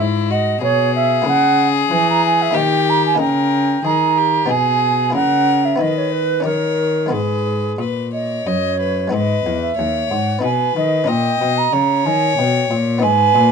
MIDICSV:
0, 0, Header, 1, 5, 480
1, 0, Start_track
1, 0, Key_signature, 5, "minor"
1, 0, Tempo, 645856
1, 940, Time_signature, 3, 2, 24, 8
1, 3343, Tempo, 662252
1, 6703, Tempo, 650054
1, 9939, End_track
2, 0, Start_track
2, 0, Title_t, "Flute"
2, 0, Program_c, 0, 73
2, 230, Note_on_c, 0, 75, 79
2, 460, Note_off_c, 0, 75, 0
2, 467, Note_on_c, 0, 73, 77
2, 699, Note_off_c, 0, 73, 0
2, 711, Note_on_c, 0, 76, 85
2, 941, Note_off_c, 0, 76, 0
2, 952, Note_on_c, 0, 78, 92
2, 1251, Note_off_c, 0, 78, 0
2, 1441, Note_on_c, 0, 80, 68
2, 1541, Note_off_c, 0, 80, 0
2, 1559, Note_on_c, 0, 82, 78
2, 1665, Note_off_c, 0, 82, 0
2, 1676, Note_on_c, 0, 80, 79
2, 1799, Note_on_c, 0, 76, 75
2, 1810, Note_off_c, 0, 80, 0
2, 1910, Note_on_c, 0, 79, 84
2, 1921, Note_off_c, 0, 76, 0
2, 2155, Note_on_c, 0, 82, 87
2, 2166, Note_off_c, 0, 79, 0
2, 2266, Note_off_c, 0, 82, 0
2, 2276, Note_on_c, 0, 80, 78
2, 2378, Note_off_c, 0, 80, 0
2, 2382, Note_on_c, 0, 79, 78
2, 2872, Note_on_c, 0, 82, 83
2, 2883, Note_off_c, 0, 79, 0
2, 3338, Note_off_c, 0, 82, 0
2, 3343, Note_on_c, 0, 80, 79
2, 3808, Note_off_c, 0, 80, 0
2, 3817, Note_on_c, 0, 78, 80
2, 4180, Note_on_c, 0, 76, 61
2, 4191, Note_off_c, 0, 78, 0
2, 4298, Note_on_c, 0, 75, 72
2, 4309, Note_off_c, 0, 76, 0
2, 4416, Note_on_c, 0, 73, 62
2, 4427, Note_off_c, 0, 75, 0
2, 4521, Note_on_c, 0, 71, 62
2, 4532, Note_off_c, 0, 73, 0
2, 4756, Note_off_c, 0, 71, 0
2, 4761, Note_on_c, 0, 70, 58
2, 5251, Note_on_c, 0, 68, 57
2, 5262, Note_off_c, 0, 70, 0
2, 5747, Note_off_c, 0, 68, 0
2, 5978, Note_on_c, 0, 75, 58
2, 6225, Note_on_c, 0, 73, 55
2, 6236, Note_off_c, 0, 75, 0
2, 6697, Note_off_c, 0, 73, 0
2, 6701, Note_on_c, 0, 75, 65
2, 7057, Note_off_c, 0, 75, 0
2, 7062, Note_on_c, 0, 76, 66
2, 7420, Note_on_c, 0, 78, 69
2, 7431, Note_off_c, 0, 76, 0
2, 7661, Note_off_c, 0, 78, 0
2, 7670, Note_on_c, 0, 80, 71
2, 7901, Note_off_c, 0, 80, 0
2, 7910, Note_on_c, 0, 75, 78
2, 8147, Note_on_c, 0, 79, 78
2, 8158, Note_off_c, 0, 75, 0
2, 8509, Note_on_c, 0, 82, 75
2, 8520, Note_off_c, 0, 79, 0
2, 8864, Note_on_c, 0, 80, 78
2, 8875, Note_off_c, 0, 82, 0
2, 9099, Note_on_c, 0, 79, 68
2, 9110, Note_off_c, 0, 80, 0
2, 9367, Note_off_c, 0, 79, 0
2, 9580, Note_on_c, 0, 80, 80
2, 9935, Note_off_c, 0, 80, 0
2, 9939, End_track
3, 0, Start_track
3, 0, Title_t, "Violin"
3, 0, Program_c, 1, 40
3, 0, Note_on_c, 1, 64, 57
3, 227, Note_on_c, 1, 66, 55
3, 239, Note_off_c, 1, 64, 0
3, 463, Note_off_c, 1, 66, 0
3, 467, Note_on_c, 1, 68, 79
3, 1888, Note_on_c, 1, 67, 68
3, 1899, Note_off_c, 1, 68, 0
3, 2375, Note_off_c, 1, 67, 0
3, 2383, Note_on_c, 1, 70, 63
3, 2855, Note_off_c, 1, 70, 0
3, 2862, Note_on_c, 1, 68, 54
3, 3102, Note_on_c, 1, 67, 52
3, 3113, Note_off_c, 1, 68, 0
3, 3346, Note_on_c, 1, 68, 60
3, 3357, Note_off_c, 1, 67, 0
3, 3819, Note_off_c, 1, 68, 0
3, 3827, Note_on_c, 1, 70, 59
3, 4287, Note_off_c, 1, 70, 0
3, 4296, Note_on_c, 1, 71, 59
3, 4761, Note_off_c, 1, 71, 0
3, 4771, Note_on_c, 1, 73, 55
3, 5243, Note_off_c, 1, 73, 0
3, 5249, Note_on_c, 1, 71, 50
3, 5679, Note_off_c, 1, 71, 0
3, 5733, Note_on_c, 1, 71, 47
3, 5962, Note_off_c, 1, 71, 0
3, 5982, Note_on_c, 1, 73, 48
3, 6221, Note_on_c, 1, 75, 57
3, 6232, Note_off_c, 1, 73, 0
3, 6457, Note_off_c, 1, 75, 0
3, 6461, Note_on_c, 1, 71, 48
3, 6697, Note_off_c, 1, 71, 0
3, 6705, Note_on_c, 1, 71, 55
3, 7157, Note_off_c, 1, 71, 0
3, 7182, Note_on_c, 1, 73, 61
3, 7652, Note_off_c, 1, 73, 0
3, 7668, Note_on_c, 1, 71, 60
3, 8138, Note_on_c, 1, 75, 67
3, 8149, Note_off_c, 1, 71, 0
3, 8622, Note_on_c, 1, 73, 71
3, 8633, Note_off_c, 1, 75, 0
3, 9578, Note_on_c, 1, 71, 68
3, 9589, Note_off_c, 1, 73, 0
3, 9939, Note_off_c, 1, 71, 0
3, 9939, End_track
4, 0, Start_track
4, 0, Title_t, "Harpsichord"
4, 0, Program_c, 2, 6
4, 0, Note_on_c, 2, 44, 45
4, 0, Note_on_c, 2, 61, 44
4, 0, Note_on_c, 2, 64, 40
4, 0, Note_on_c, 2, 68, 40
4, 428, Note_off_c, 2, 44, 0
4, 457, Note_on_c, 2, 47, 47
4, 899, Note_off_c, 2, 61, 0
4, 904, Note_off_c, 2, 64, 0
4, 906, Note_on_c, 2, 58, 45
4, 909, Note_off_c, 2, 47, 0
4, 912, Note_off_c, 2, 68, 0
4, 916, Note_on_c, 2, 64, 46
4, 927, Note_on_c, 2, 70, 42
4, 940, Note_on_c, 2, 49, 51
4, 1388, Note_off_c, 2, 49, 0
4, 1421, Note_on_c, 2, 52, 49
4, 1849, Note_off_c, 2, 58, 0
4, 1854, Note_off_c, 2, 64, 0
4, 1859, Note_off_c, 2, 70, 0
4, 1865, Note_on_c, 2, 58, 41
4, 1867, Note_off_c, 2, 52, 0
4, 1877, Note_on_c, 2, 63, 41
4, 1890, Note_on_c, 2, 70, 43
4, 1902, Note_on_c, 2, 51, 46
4, 2331, Note_off_c, 2, 58, 0
4, 2339, Note_on_c, 2, 58, 43
4, 2340, Note_off_c, 2, 63, 0
4, 2349, Note_on_c, 2, 63, 45
4, 2350, Note_off_c, 2, 70, 0
4, 2352, Note_off_c, 2, 51, 0
4, 2359, Note_on_c, 2, 70, 42
4, 2372, Note_on_c, 2, 49, 48
4, 2830, Note_off_c, 2, 49, 0
4, 2859, Note_on_c, 2, 51, 42
4, 3296, Note_off_c, 2, 58, 0
4, 3301, Note_off_c, 2, 63, 0
4, 3306, Note_off_c, 2, 70, 0
4, 3313, Note_off_c, 2, 51, 0
4, 3313, Note_on_c, 2, 59, 37
4, 3323, Note_on_c, 2, 63, 40
4, 3336, Note_on_c, 2, 68, 38
4, 3345, Note_on_c, 2, 47, 44
4, 3781, Note_on_c, 2, 58, 43
4, 3788, Note_off_c, 2, 59, 0
4, 3789, Note_off_c, 2, 47, 0
4, 3792, Note_off_c, 2, 68, 0
4, 3793, Note_off_c, 2, 63, 0
4, 3793, Note_on_c, 2, 64, 39
4, 3801, Note_on_c, 2, 68, 39
4, 3816, Note_on_c, 2, 49, 41
4, 4256, Note_on_c, 2, 59, 37
4, 4259, Note_off_c, 2, 58, 0
4, 4262, Note_off_c, 2, 49, 0
4, 4265, Note_off_c, 2, 64, 0
4, 4268, Note_on_c, 2, 63, 38
4, 4269, Note_off_c, 2, 68, 0
4, 4278, Note_on_c, 2, 68, 37
4, 4293, Note_on_c, 2, 51, 44
4, 4724, Note_on_c, 2, 61, 35
4, 4730, Note_off_c, 2, 63, 0
4, 4735, Note_off_c, 2, 59, 0
4, 4738, Note_on_c, 2, 63, 38
4, 4740, Note_off_c, 2, 51, 0
4, 4747, Note_off_c, 2, 68, 0
4, 4750, Note_on_c, 2, 67, 34
4, 4762, Note_on_c, 2, 51, 35
4, 5202, Note_on_c, 2, 56, 41
4, 5214, Note_off_c, 2, 61, 0
4, 5215, Note_off_c, 2, 63, 0
4, 5215, Note_on_c, 2, 59, 34
4, 5219, Note_off_c, 2, 51, 0
4, 5224, Note_on_c, 2, 63, 33
4, 5227, Note_off_c, 2, 67, 0
4, 5232, Note_on_c, 2, 68, 37
4, 5245, Note_on_c, 2, 44, 35
4, 5698, Note_off_c, 2, 56, 0
4, 5704, Note_off_c, 2, 59, 0
4, 5705, Note_off_c, 2, 44, 0
4, 5709, Note_off_c, 2, 63, 0
4, 5725, Note_on_c, 2, 46, 37
4, 6188, Note_off_c, 2, 46, 0
4, 6220, Note_on_c, 2, 42, 37
4, 6661, Note_on_c, 2, 56, 49
4, 6665, Note_off_c, 2, 68, 0
4, 6673, Note_off_c, 2, 42, 0
4, 6673, Note_on_c, 2, 59, 43
4, 6683, Note_on_c, 2, 63, 38
4, 6695, Note_on_c, 2, 68, 43
4, 6706, Note_on_c, 2, 44, 43
4, 6915, Note_off_c, 2, 56, 0
4, 6922, Note_off_c, 2, 44, 0
4, 6922, Note_off_c, 2, 59, 0
4, 6927, Note_off_c, 2, 63, 0
4, 6947, Note_on_c, 2, 40, 43
4, 7163, Note_off_c, 2, 40, 0
4, 7188, Note_on_c, 2, 39, 44
4, 7402, Note_off_c, 2, 39, 0
4, 7427, Note_on_c, 2, 44, 44
4, 7629, Note_on_c, 2, 59, 37
4, 7631, Note_off_c, 2, 68, 0
4, 7641, Note_off_c, 2, 44, 0
4, 7641, Note_on_c, 2, 63, 39
4, 7653, Note_on_c, 2, 68, 37
4, 7664, Note_on_c, 2, 47, 46
4, 7880, Note_off_c, 2, 47, 0
4, 7907, Note_on_c, 2, 51, 45
4, 8111, Note_off_c, 2, 59, 0
4, 8111, Note_on_c, 2, 61, 42
4, 8117, Note_off_c, 2, 63, 0
4, 8121, Note_off_c, 2, 51, 0
4, 8123, Note_off_c, 2, 68, 0
4, 8125, Note_on_c, 2, 63, 43
4, 8135, Note_on_c, 2, 70, 41
4, 8144, Note_on_c, 2, 46, 48
4, 8360, Note_off_c, 2, 46, 0
4, 8388, Note_on_c, 2, 47, 51
4, 8603, Note_off_c, 2, 47, 0
4, 8620, Note_on_c, 2, 49, 49
4, 8839, Note_off_c, 2, 49, 0
4, 8868, Note_on_c, 2, 51, 44
4, 9084, Note_off_c, 2, 51, 0
4, 9107, Note_on_c, 2, 47, 48
4, 9323, Note_off_c, 2, 47, 0
4, 9342, Note_on_c, 2, 46, 47
4, 9541, Note_off_c, 2, 61, 0
4, 9547, Note_on_c, 2, 59, 46
4, 9548, Note_off_c, 2, 63, 0
4, 9553, Note_off_c, 2, 70, 0
4, 9557, Note_on_c, 2, 63, 49
4, 9560, Note_off_c, 2, 46, 0
4, 9571, Note_on_c, 2, 75, 44
4, 9581, Note_on_c, 2, 44, 50
4, 9799, Note_off_c, 2, 44, 0
4, 9816, Note_on_c, 2, 46, 53
4, 9939, Note_off_c, 2, 46, 0
4, 9939, Note_off_c, 2, 59, 0
4, 9939, Note_off_c, 2, 63, 0
4, 9939, Note_off_c, 2, 75, 0
4, 9939, End_track
5, 0, Start_track
5, 0, Title_t, "Cello"
5, 0, Program_c, 3, 42
5, 0, Note_on_c, 3, 44, 52
5, 451, Note_off_c, 3, 44, 0
5, 461, Note_on_c, 3, 47, 55
5, 931, Note_off_c, 3, 47, 0
5, 941, Note_on_c, 3, 49, 65
5, 1409, Note_off_c, 3, 49, 0
5, 1421, Note_on_c, 3, 52, 61
5, 1887, Note_off_c, 3, 52, 0
5, 1894, Note_on_c, 3, 51, 61
5, 2368, Note_off_c, 3, 51, 0
5, 2374, Note_on_c, 3, 49, 69
5, 2851, Note_off_c, 3, 49, 0
5, 2859, Note_on_c, 3, 51, 53
5, 3333, Note_off_c, 3, 51, 0
5, 3344, Note_on_c, 3, 47, 59
5, 3814, Note_on_c, 3, 49, 60
5, 3825, Note_off_c, 3, 47, 0
5, 4288, Note_off_c, 3, 49, 0
5, 4292, Note_on_c, 3, 51, 50
5, 4759, Note_off_c, 3, 51, 0
5, 4765, Note_on_c, 3, 51, 48
5, 5250, Note_on_c, 3, 44, 46
5, 5261, Note_off_c, 3, 51, 0
5, 5730, Note_off_c, 3, 44, 0
5, 5734, Note_on_c, 3, 46, 42
5, 6212, Note_off_c, 3, 46, 0
5, 6217, Note_on_c, 3, 42, 47
5, 6690, Note_off_c, 3, 42, 0
5, 6700, Note_on_c, 3, 44, 58
5, 6926, Note_off_c, 3, 44, 0
5, 6937, Note_on_c, 3, 40, 54
5, 7177, Note_off_c, 3, 40, 0
5, 7181, Note_on_c, 3, 39, 51
5, 7416, Note_off_c, 3, 39, 0
5, 7420, Note_on_c, 3, 44, 56
5, 7656, Note_off_c, 3, 44, 0
5, 7662, Note_on_c, 3, 47, 51
5, 7897, Note_off_c, 3, 47, 0
5, 7901, Note_on_c, 3, 51, 57
5, 8137, Note_off_c, 3, 51, 0
5, 8141, Note_on_c, 3, 46, 61
5, 8372, Note_off_c, 3, 46, 0
5, 8377, Note_on_c, 3, 47, 56
5, 8616, Note_off_c, 3, 47, 0
5, 8624, Note_on_c, 3, 49, 53
5, 8862, Note_on_c, 3, 51, 60
5, 8873, Note_off_c, 3, 49, 0
5, 9098, Note_off_c, 3, 51, 0
5, 9103, Note_on_c, 3, 47, 55
5, 9337, Note_off_c, 3, 47, 0
5, 9341, Note_on_c, 3, 46, 60
5, 9584, Note_on_c, 3, 44, 70
5, 9595, Note_off_c, 3, 46, 0
5, 9818, Note_off_c, 3, 44, 0
5, 9822, Note_on_c, 3, 46, 67
5, 9939, Note_off_c, 3, 46, 0
5, 9939, End_track
0, 0, End_of_file